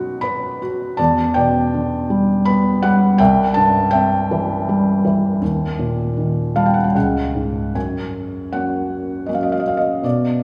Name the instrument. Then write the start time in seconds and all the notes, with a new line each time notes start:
felt piano
Already playing: B2 F#3 D#4 F#4 D#5 F#5 B5 C#6
0.21 B4 B5
0.62 F#4
0.97 E2 D5 A5
1.34 B2 D5 G5
1.74 D3
2.10 G3
2.45 B3 B5
2.83 G3 F#5
3.18 C2 E5 G5
3.54 G2 A5
3.91 C3 E5 G5
4.31 E3
4.69 G3
5.05 E3
5.41 D#2
5.79 A#2
6.17 D#3
6.56 G3 F5 A5
6.66 G5
6.74 F#5
6.84 G5
6.95 C#2 F#5
7.35 G#2
7.75 F#2 G#5
8.52 F#3 A#3 C#4 F#5
9.26 F#3 A#3 C#4 D#5
9.34 F5
9.43 D#5
9.52 F5
9.60 D#5
9.68 F5
9.77 D#5
10.03 B2 D5